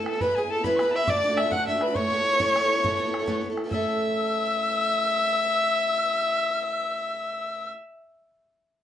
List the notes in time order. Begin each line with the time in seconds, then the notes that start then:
0.00 B3 E4 A4
0.06 A4 A5, bodhran
0.14 B3 E4 A4
0.21 E3 F#3 B3 E4 G#4 B4 B5, bodhran
0.35 F#3 B3 E4 G#4 G#5, bodhran
0.39 G#4
0.45 B3 E4
0.50 A4 A5
0.57 B3 E4 G#4
0.64 E3 F#3 B3 E4 G#4 B4 B5, bodhran
0.76 F#3 C#6, bodhran
0.81 B3 E4 G#4 B5
0.87 B3 E4 G#4
0.91 A5 B5
0.96 E5
1.01 B3 E4 G#4
1.07 D2 A2 D3 A3 D4 F#4 D5 D6, bodhran
1.23 D3 A3 D4 F#4, bodhran
1.30 D3 A3 D4 F#4
1.37 E5 E6, bodhran
1.44 D3 A3 D4 F#4
1.51 D2 A2 D3 A3 D4 F#4 F#5 F#6, bodhran
1.67 D3 A3 D4 F#4 E5 E6, bodhran
1.74 D3 A3 D4 F#4
1.81 B4 B5, bodhran
1.88 D3 A3 D4 F#4
1.95 C#3 A3 B3 E4 A4 C#5 C#6, bodhran
2.10 A3 B3 E4 A4, bodhran
2.17 B3 E4 A4
2.31 B3 E4 A4
2.39 C#3 A3 B3 E4 A4, bodhran
2.54 A3 B3 E4 A4, bodhran
2.61 B3 E4 A4
2.76 B3 E4 A4
2.83 C#3 A3 B3 E4 A4, bodhran
2.97 A3 B3 E4 A4, bodhran
3.05 B3 E4 A4
3.14 bodhran
3.19 B3 E4 A4
3.26 C#3 A3 B3 E4 A4, bodhran
3.41 A3 B3 E4, bodhran
3.45 A4
3.50 B3 E4 A4
3.57 bodhran
3.64 B3 E4 A4
3.69 A2 A3 C#4 E4 E5 E6, bodhran
3.74 A4